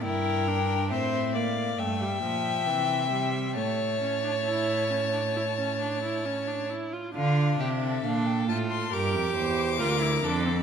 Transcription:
X:1
M:4/4
L:1/16
Q:1/4=68
K:Dm
V:1 name="Violin"
g4 e2 f2 g8 | a12- a2 z2 | f2 e2 f g a c' d'8 |]
V:2 name="Violin"
B4 c2 d2 e8 | ^c12- c2 z2 | F2 G A4- A B2 c2 B2 A2 |]
V:3 name="Viola"
E2 D2 C2 B,2 A, G, F,2 E,2 G,2 | A,2 ^C D E2 C D E C D E C D E F | D4 D2 F2 G4 F E D C |]
V:4 name="Cello" clef=bass
G,,4 A,,4 G,,2 B,,2 C,4 | A,,12- A,,2 z2 | D,2 C,2 B,,2 A,,2 G,, F,, E,,2 D,,2 F,,2 |]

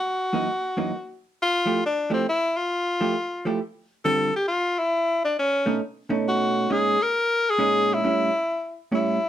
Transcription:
X:1
M:3/4
L:1/8
Q:"Swing" 1/4=135
K:Dm
V:1 name="Tenor saxophone"
_G4- G z | F2 D C E F- | F4 z2 | A G F E2 D |
^C2 z2 ^F2 | _A B2 A2 E- | E3 z E2 |]
V:2 name="Hollow-body jazz guitar"
z [_G,,E,B,_E] z [G,,=E,B,_E] z2 | z [F,A,EG] z [F,A,EG] z2 | z [F,A,EG] z [F,A,EG] z2 | [D,G,CF] z4 z |
z [=B,,A,^C^D] z [B,,A,CD]3 | [B,,_A,_D_E] z3 [B,,A,DE]2 | [A,,G,^CE] z3 [A,,G,CE] z |]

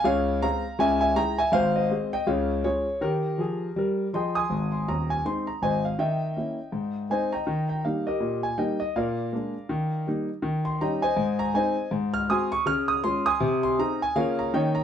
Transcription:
X:1
M:4/4
L:1/8
Q:"Swing" 1/4=162
K:Ab
V:1 name="Grand piano"
[df]2 [fb]2 [_fa] [fa] [gb] [fa] | [cf] [ce]2 [eg] [df]2 [Ad]2 | [GB]6 [egc'] [ac'e']- | [ac'e'] c' b a c' b [cea] f |
[e_fg]6 [cea] [egb]- | [egb] g f [GBe]2 a [Beg] e | [B=df]6 z2 | z c' [egb] [cea]2 b [cea]2 |
z f' [ac'e'] d' f' e' c' [ac'e']- | [ac'e'] c' b a [Bdf] b [deg] b |]
V:2 name="Grand piano" clef=bass
[D,,D,]2 [A,CA]2 [D,,D,]2 [A,_FA]2 | [A,,,A,,]2 [A,CA]2 [D,,D,]2 [A,DF]2 | E,2 [F,A]2 [G,B]2 [F,A]2 | [A,,,A,,]2 [E,,,E,,]2 [A,CE]2 [A,,,A,,]2 |
E,2 [B,D_F]2 A,,2 [A,CE]2 | E,2 [G,B,E]2 B,,2 [G,B,E]2 | B,,2 [A,B,=D]2 E,2 [G,B,E]2 | E,2 [G,DE]2 A,,2 [A,CE]2 |
A,,2 [A,C_G]2 D,2 [A,DF]2 | C,2 [CEA]2 [D,B,DF]2 [E,B,DE]2 |]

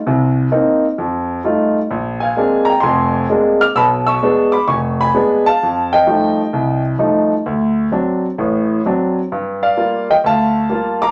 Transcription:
X:1
M:4/4
L:1/8
Q:"Swing" 1/4=130
K:Fmix
V:1 name="Grand piano"
z8 | z [f_a]2 [gb] [ac']2 z [d'f'] | [=b=e'] [_d'e']2 [b=d'] [^g_d'] [gb]2 [fa]- | [fa] [eg]4 z3 |
z8 | z [df]2 [eg] [fa]3 [bd'] |]
V:2 name="Grand piano" clef=bass
[C,,C,]2 [B,CE] z F,,2 [G,A,EF] z | B,,,2 [_A,B,CD] z [F,,,F,,]2 [A,B,CD] z | [=B,,,=B,,]2 [^G,=B,D] z F,,,2 [G,B,D] z | F,,2 [F,G,A,E] z C,,2 [F,G,A,E] z |
D,,2 [^F,CD] z [A,,,A,,]2 [F,CD] z | G,,2 [G,B,F] z D,,2 [G,B,F] z |]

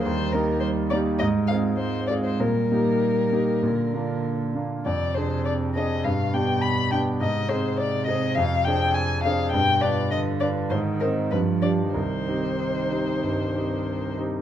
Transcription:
X:1
M:4/4
L:1/16
Q:1/4=101
K:Eb
V:1 name="Violin"
c2 B2 c2 d2 e2 f2 c2 d c | B12 z4 | [K:Cm] d2 c2 d2 e2 f2 g2 =b2 g2 | e2 c2 d2 e2 f2 g2 a2 f2 |
g2 d2 e2 d2 c2 B2 =B2 d2 | c12- c2 z2 |]
V:2 name="Grand piano"
E,,2 [B,EG]4 [B,EG]2 A,,2 [CFA]4 [CFA]2 | B,,2 [B,EG]4 [B,EG]2 B,,2 [B,DF]4 [B,DF]2 | [K:Cm] F,,2 [CDA]4 [CDA]2 G,,2 [=B,DG]4 [B,DG]2 | A,,2 [CAc]4 [CAc]2 F,,2 [DAc]4 [DAc]2 |
G,,2 [DF=B]4 [DFB]2 A,,2 [CEc]2 G,,2 [DFG]2 | C,,2 [CEG]4 [CEG]2 G,,2 [CEG]4 [CEG]2 |]
V:3 name="Cello" clef=bass
G,4 G,4 A,4 A,4 | G,8 D,6 z2 | [K:Cm] C,8 =B,,8 | C,16 |
=B,,4 D,4 E,4 F,4 | E,12- E,2 z2 |]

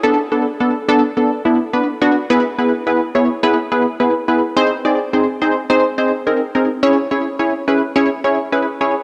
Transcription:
X:1
M:4/4
L:1/16
Q:1/4=106
K:Emix
V:1 name="Analog polysynth"
[B,DA] z [B,DA] z [B,DA] z [B,DA] z [B,DA] z [B,DE] z [B,DB] z [B,DF] z | [B,EGB] z [B,EGB] z [B,EGB] z [B,EGc] z [B,EGB] z [B,EGB] z [B,EGB] z [B,EGB] z | [^B,^DG^B] z [B,DG=d] z [B,^DGB] z [B,DGB] z [B,DGB] z [B,DGB] z [B,DG^A] z [B,DGA] z | [CEGc] z [CEGc] z [CEGc] z [CEGB] z [CEGc] z [CEGc] z [CEGB] z [CEGc] z |]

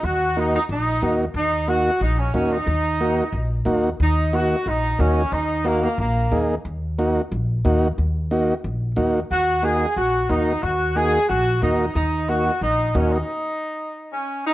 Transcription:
X:1
M:4/4
L:1/8
Q:1/4=181
K:Ebm
V:1 name="Saxophone section"
G2 E E E3 z | E2 G2 E D D E- | E6 z2 | E2 G2 E2 D2 |
E2 B, B, B,3 z | z8 | z8 | G2 A2 G2 E2 |
G2 A2 G2 E2 | E2 G2 E2 D E- | E4- E D2 E |]
V:2 name="Transistor combo organ"
z2 [B,EG] z3 [B,EG] z | z2 [B,EG] z3 [B,EG] z | z2 [B,EG] z3 [B,EG] z | z2 [B,EG] z3 [B,EG] z |
z2 [B,EG] z3 [B,EA] z | z2 [B,EG] z3 [B,EG] z | z2 [B,EG] z3 [B,EG] z | z2 [B,EG] z3 [B,EG] z |
z2 [B,EG] z3 [B,EG] z | z2 [B,EG] z3 [B,EG] z | z8 |]
V:3 name="Upright bass" clef=bass
E,,4 B,,,2 E,,2 | E,,4 B,,,2 E,,2 | E,,4 B,,,2 E,,2 | E,,4 B,,,2 E,,2 |
E,,4 B,,,2 E,,2 | E,,4 B,,,2 E,,2 | E,,4 B,,,2 E,,2 | E,,4 B,,,2 E,,2 |
E,,4 B,,,2 E,,2 | E,,4 B,,,2 E,,2 | z8 |]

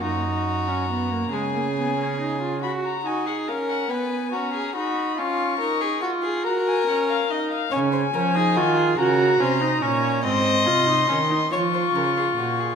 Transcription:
X:1
M:6/8
L:1/16
Q:3/8=47
K:C#mix
V:1 name="Violin"
a6 g6 | b a g f e f g2 a2 b2 | c'6 a g f e d e | g6 a6 |
^b6 c'6 |]
V:2 name="Violin"
F6 G6 | F2 F G A2 B2 F G F2 | E2 A G F G A6 | c ^B A G F G A2 B2 c2 |
d6 c ^B A G F G |]
V:3 name="Viola"
D3 C B, A, G, A, B, C D E | F2 D2 C2 B,2 C2 D2 | C2 D2 E2 F2 C2 D2 | C2 C D E2 F2 C D C2 |
^B,2 E D C D E6 |]
V:4 name="Cello" clef=bass
F,,6 C,6 | z12 | z12 | C,2 E,2 D,2 C,2 ^B,,2 A,,2 |
G,,2 ^B,,2 D,2 E,2 C,2 A,,2 |]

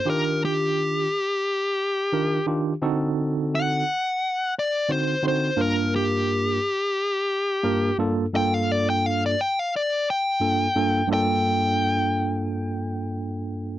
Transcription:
X:1
M:4/4
L:1/16
Q:1/4=87
K:Gm
V:1 name="Lead electric guitar"
B2 G12 z2 | z4 ^f6 d2 c2 c2 | B2 G12 z2 | g f d g f d g f d2 g6 |
g16 |]
V:2 name="Tine electric piano"
[E,DFG]6 z6 [E,DFB]2 [E,DFG]2 | [D,CE^FA]6 z6 [D,CEFc]2 [D,CEFc]2 | [G,,B,DFB]6 z6 [G,,B,DFB]2 [G,,B,DFA]2 | [G,,B,DFA]6 z6 [G,,B,DFA]2 [G,,B,DFA]2 |
[G,,B,DFA]16 |]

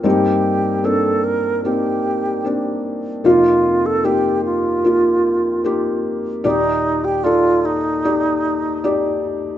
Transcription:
X:1
M:4/4
L:1/16
Q:1/4=75
K:Fmix
V:1 name="Alto flute"
G4 A2 B2 G6 z2 | F3 A G2 F8 z2 | E3 G F2 E8 z2 |]
V:2 name="Felt piano"
[B,CE]4 [B,CD]4 [B,CE]4 [B,CD]4 | [B,EF]4 [B,EG]4 [B,EF]4 [B,EG]4 | [EGd]4 [EAd]4 [EGd]4 [EGd]4 |]
V:3 name="Felt piano" clef=bass
[G,,G,]16 | [F,,C,]16 | [E,,B,,]16 |]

